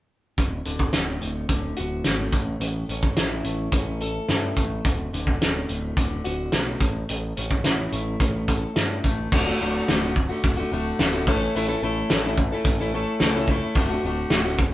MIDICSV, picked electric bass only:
0, 0, Header, 1, 2, 480
1, 0, Start_track
1, 0, Key_signature, 2, "major"
1, 0, Tempo, 557621
1, 325, Time_signature, 4, 2, 24, 8
1, 12686, End_track
2, 0, Start_track
2, 0, Title_t, "Picked electric bass"
2, 0, Program_c, 0, 34
2, 325, Note_on_c, 0, 26, 77
2, 518, Note_off_c, 0, 26, 0
2, 569, Note_on_c, 0, 26, 73
2, 760, Note_off_c, 0, 26, 0
2, 821, Note_on_c, 0, 26, 71
2, 1007, Note_off_c, 0, 26, 0
2, 1057, Note_on_c, 0, 26, 70
2, 1245, Note_off_c, 0, 26, 0
2, 1290, Note_on_c, 0, 26, 73
2, 1481, Note_off_c, 0, 26, 0
2, 1538, Note_on_c, 0, 26, 84
2, 1726, Note_off_c, 0, 26, 0
2, 1779, Note_on_c, 0, 32, 73
2, 1967, Note_off_c, 0, 32, 0
2, 2006, Note_on_c, 0, 33, 64
2, 2199, Note_off_c, 0, 33, 0
2, 2240, Note_on_c, 0, 33, 74
2, 2436, Note_off_c, 0, 33, 0
2, 2486, Note_on_c, 0, 33, 70
2, 2680, Note_off_c, 0, 33, 0
2, 2734, Note_on_c, 0, 33, 77
2, 2925, Note_off_c, 0, 33, 0
2, 2963, Note_on_c, 0, 33, 74
2, 3159, Note_off_c, 0, 33, 0
2, 3210, Note_on_c, 0, 33, 75
2, 3596, Note_off_c, 0, 33, 0
2, 3693, Note_on_c, 0, 43, 77
2, 3886, Note_off_c, 0, 43, 0
2, 3938, Note_on_c, 0, 33, 67
2, 4129, Note_off_c, 0, 33, 0
2, 4178, Note_on_c, 0, 26, 76
2, 4369, Note_off_c, 0, 26, 0
2, 4414, Note_on_c, 0, 26, 80
2, 4607, Note_off_c, 0, 26, 0
2, 4655, Note_on_c, 0, 26, 78
2, 4849, Note_off_c, 0, 26, 0
2, 4904, Note_on_c, 0, 26, 74
2, 5094, Note_off_c, 0, 26, 0
2, 5147, Note_on_c, 0, 26, 81
2, 5337, Note_off_c, 0, 26, 0
2, 5379, Note_on_c, 0, 26, 83
2, 5572, Note_off_c, 0, 26, 0
2, 5621, Note_on_c, 0, 35, 74
2, 5813, Note_off_c, 0, 35, 0
2, 5862, Note_on_c, 0, 33, 70
2, 6054, Note_off_c, 0, 33, 0
2, 6108, Note_on_c, 0, 33, 78
2, 6298, Note_off_c, 0, 33, 0
2, 6350, Note_on_c, 0, 33, 71
2, 6539, Note_off_c, 0, 33, 0
2, 6575, Note_on_c, 0, 33, 70
2, 6771, Note_off_c, 0, 33, 0
2, 6821, Note_on_c, 0, 33, 82
2, 7015, Note_off_c, 0, 33, 0
2, 7062, Note_on_c, 0, 33, 80
2, 7448, Note_off_c, 0, 33, 0
2, 7541, Note_on_c, 0, 43, 77
2, 7734, Note_off_c, 0, 43, 0
2, 7786, Note_on_c, 0, 33, 71
2, 7977, Note_off_c, 0, 33, 0
2, 8026, Note_on_c, 0, 26, 80
2, 8194, Note_off_c, 0, 26, 0
2, 8272, Note_on_c, 0, 26, 70
2, 8437, Note_off_c, 0, 26, 0
2, 8513, Note_on_c, 0, 26, 72
2, 8846, Note_off_c, 0, 26, 0
2, 8990, Note_on_c, 0, 26, 81
2, 9155, Note_off_c, 0, 26, 0
2, 9224, Note_on_c, 0, 26, 87
2, 9391, Note_off_c, 0, 26, 0
2, 9460, Note_on_c, 0, 26, 79
2, 9707, Note_off_c, 0, 26, 0
2, 9707, Note_on_c, 0, 33, 80
2, 9872, Note_off_c, 0, 33, 0
2, 9941, Note_on_c, 0, 33, 79
2, 10108, Note_off_c, 0, 33, 0
2, 10179, Note_on_c, 0, 33, 75
2, 10346, Note_off_c, 0, 33, 0
2, 10429, Note_on_c, 0, 33, 75
2, 10760, Note_off_c, 0, 33, 0
2, 10887, Note_on_c, 0, 33, 84
2, 11224, Note_off_c, 0, 33, 0
2, 11376, Note_on_c, 0, 37, 79
2, 11709, Note_off_c, 0, 37, 0
2, 11839, Note_on_c, 0, 26, 84
2, 12010, Note_off_c, 0, 26, 0
2, 12078, Note_on_c, 0, 26, 82
2, 12249, Note_off_c, 0, 26, 0
2, 12315, Note_on_c, 0, 26, 86
2, 12653, Note_off_c, 0, 26, 0
2, 12686, End_track
0, 0, End_of_file